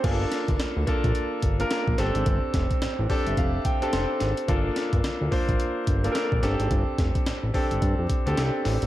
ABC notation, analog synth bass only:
X:1
M:4/4
L:1/16
Q:"Swing 16ths" 1/4=108
K:Gm
V:1 name="Analog synth bass" clef=bass
G,,,2 z G,,, D,, D,, z B,,, z2 G,,,2 z B,,, G,,, _A,,, | G,,, z F,,, z A,,, A,,, z G,,, F,,,2 z2 F,,, z _A,,, z | G,,,2 z G,,, D,, D,, z B,,, z2 G,,,2 z B,,, G,,, _A,,, | G,,, z F,,, z A,,, A,,, z G,,, G,, F,, z D,, C,, z A,,, _A,,, |]